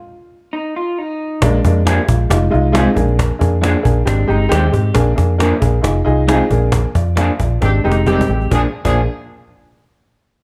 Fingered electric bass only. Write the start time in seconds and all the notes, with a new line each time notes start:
1.43 A#1
1.65 F2
2.09 A#1
2.31 F1
2.54 C2
2.97 A#1
3.41 F2
3.85 A#1
4.07 G#1
4.29 G1
4.52 D#2
4.74 G#2
4.95 A#1
5.18 F2
5.62 A#1
5.84 F1
6.07 C2
6.51 A#1
6.95 F2
7.40 A#1
7.62 G#1
7.85 F1
8.29 A1
8.52 A#1
8.85 A#1